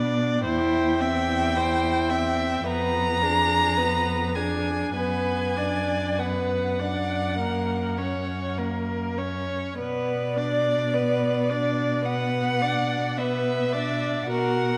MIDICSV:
0, 0, Header, 1, 5, 480
1, 0, Start_track
1, 0, Key_signature, 2, "minor"
1, 0, Tempo, 1113173
1, 189, Time_signature, 4, 2, 24, 8
1, 1630, Tempo, 1171875
1, 2110, Tempo, 1221996
1, 3070, Tempo, 1192843
1, 4030, Tempo, 1125704
1, 6160, End_track
2, 0, Start_track
2, 0, Title_t, "Violin"
2, 0, Program_c, 0, 40
2, 187, Note_on_c, 0, 79, 66
2, 1146, Note_on_c, 0, 82, 82
2, 1152, Note_off_c, 0, 79, 0
2, 1865, Note_on_c, 0, 80, 51
2, 1871, Note_off_c, 0, 82, 0
2, 2108, Note_off_c, 0, 80, 0
2, 2111, Note_on_c, 0, 80, 51
2, 2598, Note_on_c, 0, 78, 37
2, 2603, Note_off_c, 0, 80, 0
2, 3547, Note_off_c, 0, 78, 0
2, 4030, Note_on_c, 0, 74, 58
2, 4997, Note_on_c, 0, 78, 61
2, 5003, Note_off_c, 0, 74, 0
2, 5475, Note_on_c, 0, 76, 51
2, 5482, Note_off_c, 0, 78, 0
2, 5947, Note_off_c, 0, 76, 0
2, 5949, Note_on_c, 0, 78, 56
2, 6160, Note_off_c, 0, 78, 0
2, 6160, End_track
3, 0, Start_track
3, 0, Title_t, "Violin"
3, 0, Program_c, 1, 40
3, 0, Note_on_c, 1, 74, 41
3, 189, Note_off_c, 1, 74, 0
3, 193, Note_on_c, 1, 72, 44
3, 434, Note_on_c, 1, 76, 40
3, 440, Note_off_c, 1, 72, 0
3, 674, Note_on_c, 1, 72, 42
3, 681, Note_off_c, 1, 76, 0
3, 905, Note_on_c, 1, 76, 38
3, 911, Note_off_c, 1, 72, 0
3, 1146, Note_off_c, 1, 76, 0
3, 1149, Note_on_c, 1, 71, 37
3, 1390, Note_on_c, 1, 68, 35
3, 1396, Note_off_c, 1, 71, 0
3, 1627, Note_on_c, 1, 71, 36
3, 1633, Note_off_c, 1, 68, 0
3, 1865, Note_on_c, 1, 68, 34
3, 1871, Note_off_c, 1, 71, 0
3, 2105, Note_off_c, 1, 68, 0
3, 2107, Note_on_c, 1, 71, 33
3, 2352, Note_on_c, 1, 74, 29
3, 2358, Note_off_c, 1, 71, 0
3, 2594, Note_on_c, 1, 71, 29
3, 2600, Note_off_c, 1, 74, 0
3, 2833, Note_on_c, 1, 74, 29
3, 2839, Note_off_c, 1, 71, 0
3, 3064, Note_off_c, 1, 74, 0
3, 3066, Note_on_c, 1, 70, 28
3, 3305, Note_on_c, 1, 73, 26
3, 3311, Note_off_c, 1, 70, 0
3, 3546, Note_on_c, 1, 70, 28
3, 3552, Note_off_c, 1, 73, 0
3, 3787, Note_on_c, 1, 73, 30
3, 3793, Note_off_c, 1, 70, 0
3, 4028, Note_off_c, 1, 73, 0
3, 4030, Note_on_c, 1, 71, 34
3, 4284, Note_on_c, 1, 74, 32
3, 4290, Note_off_c, 1, 71, 0
3, 4524, Note_on_c, 1, 71, 32
3, 4531, Note_off_c, 1, 74, 0
3, 4762, Note_on_c, 1, 74, 34
3, 4768, Note_off_c, 1, 71, 0
3, 4994, Note_off_c, 1, 74, 0
3, 4997, Note_on_c, 1, 71, 33
3, 5240, Note_on_c, 1, 74, 34
3, 5247, Note_off_c, 1, 71, 0
3, 5480, Note_on_c, 1, 71, 32
3, 5486, Note_off_c, 1, 74, 0
3, 5713, Note_on_c, 1, 74, 35
3, 5719, Note_off_c, 1, 71, 0
3, 5952, Note_off_c, 1, 74, 0
3, 5956, Note_on_c, 1, 70, 39
3, 6160, Note_off_c, 1, 70, 0
3, 6160, End_track
4, 0, Start_track
4, 0, Title_t, "Viola"
4, 0, Program_c, 2, 41
4, 0, Note_on_c, 2, 62, 37
4, 189, Note_off_c, 2, 62, 0
4, 191, Note_on_c, 2, 64, 45
4, 431, Note_on_c, 2, 60, 40
4, 437, Note_off_c, 2, 64, 0
4, 671, Note_on_c, 2, 64, 38
4, 677, Note_off_c, 2, 60, 0
4, 907, Note_on_c, 2, 60, 41
4, 914, Note_off_c, 2, 64, 0
4, 1145, Note_off_c, 2, 60, 0
4, 1148, Note_on_c, 2, 59, 40
4, 1389, Note_on_c, 2, 62, 35
4, 1395, Note_off_c, 2, 59, 0
4, 1632, Note_on_c, 2, 59, 30
4, 1638, Note_off_c, 2, 62, 0
4, 1865, Note_on_c, 2, 62, 33
4, 1872, Note_off_c, 2, 59, 0
4, 2111, Note_off_c, 2, 62, 0
4, 2112, Note_on_c, 2, 59, 36
4, 2352, Note_on_c, 2, 62, 29
4, 2358, Note_off_c, 2, 59, 0
4, 2598, Note_on_c, 2, 59, 29
4, 2604, Note_off_c, 2, 62, 0
4, 2834, Note_on_c, 2, 62, 30
4, 2840, Note_off_c, 2, 59, 0
4, 3068, Note_off_c, 2, 62, 0
4, 3070, Note_on_c, 2, 58, 32
4, 3307, Note_on_c, 2, 61, 27
4, 3313, Note_off_c, 2, 58, 0
4, 3547, Note_on_c, 2, 58, 25
4, 3553, Note_off_c, 2, 61, 0
4, 3790, Note_on_c, 2, 61, 27
4, 3796, Note_off_c, 2, 58, 0
4, 4028, Note_off_c, 2, 61, 0
4, 4031, Note_on_c, 2, 59, 37
4, 4278, Note_on_c, 2, 62, 33
4, 4285, Note_off_c, 2, 59, 0
4, 4521, Note_on_c, 2, 59, 35
4, 4528, Note_off_c, 2, 62, 0
4, 4762, Note_on_c, 2, 62, 35
4, 4768, Note_off_c, 2, 59, 0
4, 4999, Note_off_c, 2, 62, 0
4, 5002, Note_on_c, 2, 59, 34
4, 5240, Note_on_c, 2, 62, 30
4, 5246, Note_off_c, 2, 59, 0
4, 5480, Note_on_c, 2, 59, 29
4, 5486, Note_off_c, 2, 62, 0
4, 5718, Note_on_c, 2, 62, 36
4, 5724, Note_off_c, 2, 59, 0
4, 5951, Note_off_c, 2, 62, 0
4, 5954, Note_on_c, 2, 66, 43
4, 6160, Note_off_c, 2, 66, 0
4, 6160, End_track
5, 0, Start_track
5, 0, Title_t, "Cello"
5, 0, Program_c, 3, 42
5, 0, Note_on_c, 3, 47, 37
5, 189, Note_on_c, 3, 40, 46
5, 196, Note_off_c, 3, 47, 0
5, 1147, Note_off_c, 3, 40, 0
5, 1150, Note_on_c, 3, 41, 40
5, 2096, Note_off_c, 3, 41, 0
5, 2114, Note_on_c, 3, 42, 36
5, 3932, Note_off_c, 3, 42, 0
5, 4037, Note_on_c, 3, 47, 35
5, 5939, Note_off_c, 3, 47, 0
5, 5955, Note_on_c, 3, 47, 42
5, 6160, Note_off_c, 3, 47, 0
5, 6160, End_track
0, 0, End_of_file